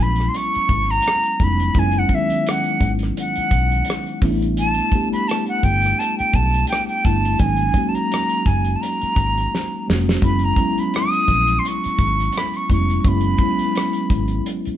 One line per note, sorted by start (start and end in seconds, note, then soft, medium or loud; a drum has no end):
0.00 0.27 A#1 medium
0.00 1.40 F#3 medium
0.00 1.41 G#3 medium
0.00 1.42 B3 medium
0.00 1.42 C#4 medium
0.00 1.78 E4 medium
0.00 0.30 B5 medium
0.00 closed hi-hat medium
0.16 closed hi-hat soft
0.20 cross-stick soft
0.29 0.38 C6 medium
0.34 0.92 C#6 loud
0.34 closed hi-hat medium
0.54 muted fingered electric bass stroke soft
0.54 closed hi-hat soft
0.69 0.98 G#1 medium
0.69 kick medium
0.69 closed hi-hat medium
0.90 1.45 A#5 loud
0.90 closed hi-hat soft
1.02 closed hi-hat medium
1.08 cross-stick medium
1.24 closed hi-hat soft
1.40 1.69 F1 medium
1.40 1.71 F#3 medium
1.40 1.71 G#3 medium
1.40 1.72 B3 medium
1.40 1.72 C#4 medium
1.40 1.72 D#4 medium
1.40 1.81 B5 medium
1.40 kick medium
1.40 closed hi-hat medium
1.60 closed hi-hat medium
1.74 2.03 F#1 medium
1.74 2.06 F#3 medium
1.74 2.06 G#3 medium
1.74 2.07 B3 medium
1.74 2.07 C#4 medium
1.74 2.07 E4 medium
1.74 kick loud
1.74 closed hi-hat medium
1.79 2.00 G#5 medium
1.91 closed hi-hat soft
1.99 2.16 F#5 medium
2.09 3.34 F#3 medium
2.09 3.35 G#3 medium
2.09 3.35 B3 medium
2.09 3.35 C#4 medium
2.09 kick medium
2.09 closed hi-hat medium
2.14 3.36 D#3 medium
2.14 2.52 E5 medium
2.30 closed hi-hat soft
2.47 2.92 F#5 medium
2.47 cross-stick loud
2.47 closed hi-hat medium
2.64 closed hi-hat soft
2.81 3.10 G#1 medium
2.81 kick medium
2.81 closed hi-hat medium
2.99 closed hi-hat soft
3.03 cross-stick soft
3.17 4.20 F#5 medium
3.17 closed hi-hat medium
3.36 muted fingered electric bass stroke soft
3.36 closed hi-hat soft
3.51 3.80 B1 medium
3.51 kick medium
3.51 closed hi-hat medium
3.72 closed hi-hat soft
3.85 closed hi-hat medium
3.90 cross-stick loud
4.06 closed hi-hat soft
4.22 4.79 A1 medium
4.22 4.84 G3 medium
4.22 4.84 A3 medium
4.22 4.84 B3 medium
4.22 4.30 C#4 medium
4.22 4.85 E4 medium
4.22 kick medium
4.22 cross-stick soft
4.22 open hi-hat soft
4.30 4.88 D4 medium
4.42 closed hi-hat medium
4.57 5.09 A5 loud
4.57 closed hi-hat medium
4.74 closed hi-hat soft
4.92 6.16 G3 medium
4.92 6.17 A3 medium
4.92 6.17 B3 medium
4.92 6.17 D4 medium
4.92 6.18 G4 medium
4.92 kick medium
4.92 closed hi-hat medium
5.13 5.30 B5 medium
5.13 closed hi-hat medium
5.28 5.47 A5 medium
5.28 cross-stick loud
5.28 closed hi-hat medium
5.47 5.66 F#5 medium
5.47 closed hi-hat soft
5.63 5.92 G1 medium
5.63 6.01 G5 medium
5.63 kick medium
5.63 closed hi-hat medium
5.82 closed hi-hat soft
5.86 cross-stick soft
5.99 6.18 A5 medium
5.99 closed hi-hat medium
6.19 6.37 G5 medium
6.19 muted fingered electric bass stroke soft
6.19 closed hi-hat soft
6.34 6.63 B1 medium
6.34 6.68 A5 medium
6.34 kick medium
6.34 closed hi-hat medium
6.54 closed hi-hat soft
6.67 6.87 G5 medium
6.67 closed hi-hat medium
6.73 cross-stick loud
6.88 7.07 G5 medium
6.88 closed hi-hat soft
7.05 7.34 G1 medium
7.05 7.35 G3 medium
7.05 7.36 A3 medium
7.05 7.36 B3 medium
7.05 7.36 D4 medium
7.05 7.36 E4 medium
7.05 7.42 A5 medium
7.05 kick medium
7.05 closed hi-hat medium
7.25 closed hi-hat medium
7.39 7.68 G#1 medium
7.39 7.71 F#3 medium
7.39 7.71 G#3 medium
7.39 7.71 A#3 medium
7.39 7.72 C#4 medium
7.39 7.72 D#4 medium
7.39 7.90 G#5 medium
7.39 kick medium
7.39 closed hi-hat medium
7.57 closed hi-hat soft
7.74 8.99 F#3 medium
7.74 8.99 G#3 medium
7.74 8.99 A#3 medium
7.74 9.00 C#4 medium
7.74 9.00 F#4 medium
7.74 kick medium
7.74 closed hi-hat medium
7.89 7.96 A5 medium
7.95 8.48 A#5 medium
7.95 closed hi-hat medium
8.12 cross-stick loud
8.12 closed hi-hat medium
8.30 closed hi-hat soft
8.46 8.74 F#1 medium
8.46 8.77 G#5 medium
8.46 kick medium
8.46 closed hi-hat medium
8.65 closed hi-hat soft
8.76 8.83 A5 medium
8.81 9.87 A#5 medium
8.81 closed hi-hat medium
9.02 muted fingered electric bass stroke soft
9.02 closed hi-hat soft
9.16 9.45 G#1 medium
9.16 kick medium
9.16 closed hi-hat medium
9.38 closed hi-hat soft
9.55 snare medium
9.88 10.16 F1 medium
9.88 10.18 F#3 medium
9.88 10.18 G#3 medium
9.88 10.19 A#3 medium
9.88 10.19 C#4 medium
9.88 10.19 F#4 medium
9.88 snare medium
10.09 snare medium
10.22 10.51 F#1 medium
10.22 10.53 F#3 medium
10.22 10.53 G#3 medium
10.22 10.54 B3 medium
10.22 10.54 C#4 medium
10.22 10.55 E4 medium
10.22 10.46 B5 medium
10.22 kick medium
10.22 closed hi-hat medium
10.39 closed hi-hat soft
10.44 10.81 A#5 medium
10.56 11.81 F#3 medium
10.56 11.82 G#3 medium
10.56 11.82 B3 medium
10.56 11.82 C#4 medium
10.56 11.82 E4 medium
10.56 kick medium
10.56 closed hi-hat medium
10.78 10.97 B5 medium
10.78 closed hi-hat medium
10.94 11.61 D#6 medium
10.94 cross-stick loud
10.94 closed hi-hat medium
11.12 closed hi-hat soft
11.28 11.57 A#1 medium
11.28 kick medium
11.28 closed hi-hat medium
11.47 closed hi-hat soft
11.59 11.69 C6 medium
11.65 12.39 C#6 loud
11.65 closed hi-hat medium
11.84 muted fingered electric bass stroke soft
11.84 closed hi-hat soft
11.99 12.27 G#1 medium
11.99 kick medium
11.99 closed hi-hat medium
12.20 closed hi-hat soft
12.32 closed hi-hat medium
12.38 12.58 B5 medium
12.38 cross-stick loud
12.54 12.71 C#6 medium
12.54 closed hi-hat soft
12.69 12.98 F1 medium
12.69 13.00 F#3 medium
12.69 13.00 G#3 medium
12.69 13.01 B3 medium
12.69 13.01 C#4 medium
12.69 13.01 E4 medium
12.69 13.01 C#6 medium
12.69 kick medium
12.69 closed hi-hat medium
12.90 closed hi-hat soft
13.01 13.10 C#6 medium
13.01 kick loud
13.05 13.33 F#1 medium
13.05 13.35 F#3 medium
13.05 13.36 G#3 medium
13.05 13.36 B3 medium
13.05 13.36 C#4 medium
13.05 13.37 E4 medium
13.05 14.47 B5 medium
13.05 closed hi-hat medium
13.21 closed hi-hat soft
13.38 14.63 F#3 medium
13.38 14.64 G#3 medium
13.38 14.64 B3 medium
13.38 14.64 C#4 medium
13.38 kick medium
13.38 closed hi-hat medium
13.42 14.65 E4 medium
13.59 closed hi-hat medium
13.75 cross-stick loud
13.75 closed hi-hat medium
13.93 closed hi-hat soft
14.10 14.39 G#1 medium
14.10 kick medium
14.10 closed hi-hat medium
14.28 closed hi-hat soft
14.46 closed hi-hat medium
14.65 muted fingered electric bass stroke soft
14.65 closed hi-hat soft